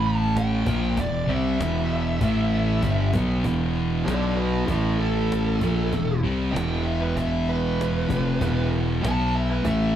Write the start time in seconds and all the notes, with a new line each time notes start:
Already playing: A1 A2 E3 A3
0.04 A5, cajon slap
0.37 G5, cajon slap
0.66 A#1 A#2 F3 A#3, cajon bass
0.97 E1 E2 B2 D5, cajon bass, cajon slap
1.27 C2 C3 G3 C4 E5, cajon slap
1.59 E1 E2 B2 E3, cajon slap
1.90 cajon slap
2.21 A1 A2 E3 A3, cajon bass
2.51 cajon slap
2.83 G1 G2 D3 G3, cajon bass
3.13 B1 B2 F#3 B3, cajon bass
3.44 E1 E2 B2 E3, cajon bass
3.75 cajon slap
4.05 B1 B2 F#3 B3 A4 D5, cajon slap
4.36 F#4 B4, cajon slap
4.66 A1 A2 E3 A3 E4 A4, cajon bass
4.99 A4, cajon slap
5.32 cajon slap
5.61 A#1 A#2 F3 A#3, cajon bass
5.92 E1 E2 B2, cajon bass, cajon slap
6.23 C2 C3 G3 C4, cajon slap
6.53 E1 E2 B2 E3 G5, cajon slap
6.83 E5, cajon slap
7.01 B4
7.16 E5, cajon bass
7.48 B4, cajon slap
7.81 cajon slap
8.09 F1 F2 C3 F3, cajon bass
8.39 E1 E2 B2 E3, cajon bass
8.73 cajon slap
9.01 B1 B2 F#3 B3 A5, cajon slap
9.34 E5, cajon slap
9.50 B4
9.63 A1 A2 E3 A3 E5, cajon bass